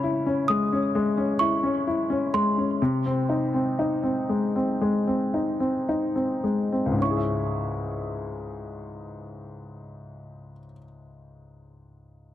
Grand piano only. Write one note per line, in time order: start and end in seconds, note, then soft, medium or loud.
0.00 2.76 C#3 medium
0.00 0.26 C#4 soft
0.00 0.03 E4 soft
0.00 1.39 E4 soft
0.26 0.71 C#4 soft
0.49 0.94 G#3 soft
0.72 1.16 C#4 soft
0.95 2.32 G#3 medium
1.17 1.62 C#4 soft
1.40 1.86 E4 soft
1.63 2.08 C#4 soft
1.87 2.78 E4 soft
2.10 2.56 C#4 soft
2.34 2.79 G#3 soft
2.57 2.80 C#4 soft
2.82 6.98 C3 medium
3.06 3.53 C4 soft
3.29 3.77 D#4 soft
3.54 4.02 C4 soft
3.79 5.32 D#4 soft
4.03 4.54 C4 soft
4.29 4.80 G#3 soft
4.56 5.06 C4 soft
4.81 6.42 G#3 soft
5.07 5.59 C4 soft
5.34 5.87 D#4 soft
5.60 6.14 C4 soft
5.89 6.98 D#4 soft
6.16 6.71 C4 soft
6.44 6.99 G#3 soft
6.72 7.00 C4 soft
6.86 10.52 C#2 soft
6.91 10.58 G#2 soft
6.98 10.64 C#4 soft
7.04 10.71 E4 soft
7.10 10.77 G#4 soft
7.17 10.83 E5 soft